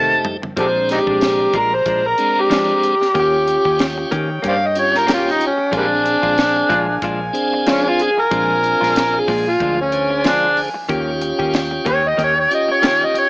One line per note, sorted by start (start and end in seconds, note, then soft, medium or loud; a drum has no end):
0.00 0.35 F1 medium
0.00 0.13 D#3 medium
0.00 0.14 A3 medium
0.00 0.37 A3 medium
0.00 0.14 C4 medium
0.00 0.37 D#4 medium
0.00 0.37 G4 medium
0.00 0.26 A5 loud
0.25 muted clean electric guitar stroke soft
0.25 floor tom medium
0.42 muted clean electric guitar stroke soft
0.42 floor tom medium
0.57 0.99 A#1 medium
0.57 0.78 F3 medium
0.57 0.78 G#3 medium
0.57 1.58 G#3 medium
0.57 1.58 C4 medium
0.57 1.58 D4 medium
0.57 0.79 D4 medium
0.57 0.67 G4 medium
0.57 0.66 A4 medium
0.57 3.13 A#4 medium
0.57 0.89 C5 medium
0.57 3.13 D5 medium
0.57 3.13 A#5 medium
0.57 kick loud
0.57 closed hi-hat medium
0.89 1.00 C4 medium
0.89 0.99 D#4 medium
0.89 1.53 G4 medium
0.89 muted clean electric guitar stroke soft
0.89 snare soft
0.89 closed hi-hat medium
1.07 1.46 A#1 medium
1.07 1.22 G#3 soft
1.07 1.22 D4 medium
1.07 kick medium
1.21 muted clean electric guitar stroke soft
1.21 snare medium
1.21 closed hi-hat medium
1.40 muted clean electric guitar stroke soft
1.53 1.80 A#1 medium
1.53 1.72 F3 medium
1.53 1.72 G#3 medium
1.53 1.71 D4 medium
1.53 1.76 A#4 medium
1.53 kick medium
1.53 closed hi-hat medium
1.73 2.08 C5 medium
1.73 muted clean electric guitar stroke soft
1.86 2.13 A#1 medium
1.86 2.04 F3 medium
1.86 2.04 G#3 medium
1.86 2.03 D4 medium
1.86 kick medium
1.86 closed hi-hat medium
2.04 2.42 A#4 medium
2.04 muted clean electric guitar stroke soft
2.18 2.95 G#3 medium
2.18 2.95 C4 medium
2.18 2.95 D4 medium
2.18 closed hi-hat medium
2.36 muted clean electric guitar stroke soft
2.41 3.15 G4 medium
2.50 2.71 F3 medium
2.50 2.71 G#3 medium
2.50 2.72 D4 medium
2.50 snare loud
2.50 closed hi-hat medium
2.83 muted clean electric guitar stroke soft
2.83 closed hi-hat medium
3.01 muted clean electric guitar stroke soft
3.01 snare soft
3.14 3.57 D#2 medium
3.14 3.36 A#3 medium
3.14 3.36 C#4 medium
3.14 4.16 C#4 medium
3.14 4.16 F4 medium
3.14 3.36 G4 medium
3.14 4.16 G4 medium
3.14 5.71 C#5 medium
3.14 5.71 D#5 medium
3.14 5.71 G5 medium
3.14 kick medium
3.14 closed hi-hat medium
3.20 3.80 G4 medium
3.47 muted clean electric guitar stroke soft
3.47 closed hi-hat medium
3.65 4.04 D#2 medium
3.65 3.79 C#4 soft
3.65 3.80 G4 soft
3.65 kick medium
3.79 muted clean electric guitar stroke soft
3.79 snare loud
3.79 closed hi-hat medium
3.98 muted clean electric guitar stroke medium
4.11 4.38 D#3 medium
4.11 4.29 A#3 medium
4.11 4.30 C#4 medium
4.11 4.28 G4 medium
4.11 kick medium
4.11 closed hi-hat medium
4.29 muted clean electric guitar stroke soft
4.42 5.51 G2 medium
4.42 4.61 A#3 medium
4.42 4.60 C#4 medium
4.42 4.59 G4 medium
4.42 kick medium
4.42 closed hi-hat medium
4.48 4.54 C5 medium
4.48 4.55 D5 medium
4.48 4.68 F5 medium
4.60 muted clean electric guitar stroke soft
4.66 4.78 D#5 medium
4.75 5.52 C#4 medium
4.75 5.53 F4 medium
4.75 5.53 G4 medium
4.75 closed hi-hat medium
4.79 4.99 C#5 medium
4.92 muted clean electric guitar stroke soft
4.92 snare soft
4.98 5.09 A#4 medium
5.06 5.28 A#3 medium
5.06 5.29 C#4 medium
5.06 5.29 G4 medium
5.06 snare loud
5.06 closed hi-hat medium
5.13 5.33 F4 medium
5.28 5.42 D#4 medium
5.28 snare soft
5.39 muted clean electric guitar stroke soft
5.39 closed hi-hat medium
5.46 5.75 C#4 medium
5.58 muted clean electric guitar stroke soft
5.71 6.15 A#1 medium
5.71 5.93 F3 medium
5.71 5.94 G#3 medium
5.71 6.74 C4 medium
5.71 5.94 D4 medium
5.71 6.74 D4 medium
5.71 5.94 F4 medium
5.71 6.74 G#4 medium
5.71 10.85 A#4 medium
5.71 10.85 F5 medium
5.71 10.85 G#5 medium
5.71 kick loud
5.71 closed hi-hat medium
5.77 5.86 G3 medium
5.77 5.85 A#3 medium
5.77 7.00 D4 loud
6.04 muted clean electric guitar stroke soft
6.04 closed hi-hat medium
6.22 6.62 A#1 medium
6.22 6.37 G#3 soft
6.22 6.38 D4 soft
6.22 6.37 F4 soft
6.22 kick medium
6.37 muted clean electric guitar stroke soft
6.37 snare loud
6.37 closed hi-hat medium
6.56 muted clean electric guitar stroke soft
6.69 6.97 A#1 medium
6.69 6.88 F3 medium
6.69 6.88 G#3 loud
6.69 6.88 D4 medium
6.69 6.87 F4 loud
6.69 kick medium
6.69 closed hi-hat medium
6.88 muted clean electric guitar stroke soft
7.02 7.29 A#1 medium
7.02 7.20 F3 medium
7.02 7.20 G#3 medium
7.02 7.20 D4 medium
7.02 7.19 F4 medium
7.02 kick medium
7.02 closed hi-hat medium
7.21 muted clean electric guitar stroke soft
7.33 8.11 C4 loud
7.33 8.11 D4 loud
7.33 8.11 G#4 loud
7.33 closed hi-hat medium
7.53 muted clean electric guitar stroke soft
7.67 7.88 F3 medium
7.67 7.88 G#3 medium
7.67 7.88 D4 medium
7.67 7.89 F4 medium
7.67 snare loud
7.67 closed hi-hat medium
7.71 7.90 C#4 medium
7.88 8.04 F4 medium
7.99 8.22 G#4 medium
7.99 muted clean electric guitar stroke soft
7.99 closed hi-hat medium
8.17 9.20 A#4 medium
8.17 muted clean electric guitar stroke soft
8.31 8.73 A#1 loud
8.31 8.52 F3 medium
8.31 8.52 G#3 medium
8.31 9.32 C4 medium
8.31 9.32 D4 medium
8.31 8.53 D4 medium
8.31 9.33 F4 medium
8.31 8.53 F4 medium
8.31 kick loud
8.31 closed hi-hat medium
8.63 muted clean electric guitar stroke soft
8.63 closed hi-hat medium
8.81 9.20 A#1 medium
8.81 8.95 G#3 soft
8.81 8.95 D4 medium
8.81 8.96 F4 medium
8.81 snare soft
8.96 muted clean electric guitar stroke soft
8.96 snare loud
8.96 closed hi-hat medium
9.14 muted clean electric guitar stroke soft
9.19 9.50 G#4 loud
9.28 9.55 A#2 medium
9.28 9.46 F3 medium
9.28 9.46 G#3 medium
9.28 9.46 D4 medium
9.28 9.45 F4 medium
9.28 kick medium
9.28 open hi-hat medium
9.46 9.79 F4 medium
9.46 muted clean electric guitar stroke soft
9.60 10.68 D2 medium
9.60 9.78 F3 medium
9.60 9.78 G#3 medium
9.60 9.77 D4 medium
9.60 9.77 F4 medium
9.60 kick medium
9.60 closed hi-hat medium
9.78 10.29 C#4 medium
9.78 muted clean electric guitar stroke soft
9.92 10.69 D3 medium
9.92 10.70 G#4 medium
9.92 10.69 C5 medium
9.92 closed hi-hat medium
10.10 muted clean electric guitar stroke soft
10.24 10.46 F3 medium
10.24 10.46 G#3 medium
10.24 10.46 D4 medium
10.24 10.58 D4 medium
10.24 10.46 F4 medium
10.24 snare loud
10.24 closed hi-hat medium
10.57 muted clean electric guitar stroke soft
10.57 open hi-hat medium
10.74 muted clean electric guitar stroke soft
10.89 11.31 D#2 medium
10.89 11.10 D#3 medium
10.89 11.10 A#3 medium
10.89 11.90 C#4 medium
10.89 11.11 C#4 medium
10.89 11.90 F4 medium
10.89 11.91 G4 medium
10.89 11.11 G4 medium
10.89 13.29 C#5 medium
10.89 13.29 D#5 medium
10.89 13.29 G5 medium
10.89 kick loud
10.89 closed hi-hat medium
11.21 muted clean electric guitar stroke soft
11.21 closed hi-hat medium
11.39 11.78 D#2 medium
11.39 11.53 A#3 soft
11.39 11.53 C#4 medium
11.39 11.54 G4 medium
11.39 kick medium
11.53 muted clean electric guitar stroke soft
11.53 snare loud
11.53 closed hi-hat medium
11.71 muted clean electric guitar stroke soft
11.85 12.13 D#2 medium
11.85 12.04 D#3 medium
11.85 12.03 A#3 medium
11.85 12.03 C#4 medium
11.85 12.02 G4 medium
11.85 kick medium
11.85 closed hi-hat medium
11.89 12.09 C#5 loud
12.03 muted clean electric guitar stroke soft
12.08 12.20 D#5 medium
12.17 12.45 D#2 medium
12.17 12.36 D#3 medium
12.17 12.36 A#3 medium
12.17 12.36 C#4 medium
12.17 12.35 G4 medium
12.17 kick medium
12.17 closed hi-hat medium
12.24 12.38 C#5 medium
12.36 12.52 C#5 medium
12.36 muted clean electric guitar stroke soft
12.50 13.27 C#4 medium
12.50 13.28 F4 medium
12.50 13.28 G4 medium
12.50 closed hi-hat medium
12.54 12.70 D#5 medium
12.69 12.84 C#5 medium
12.69 muted clean electric guitar stroke soft
12.82 13.04 D#3 medium
12.82 13.04 A#3 medium
12.82 13.04 C#4 medium
12.82 13.04 G4 medium
12.82 snare loud
12.82 closed hi-hat medium
12.86 13.06 C#5 loud
13.04 13.16 D#5 medium
13.14 muted clean electric guitar stroke soft
13.14 closed hi-hat medium
13.18 13.29 C#5 loud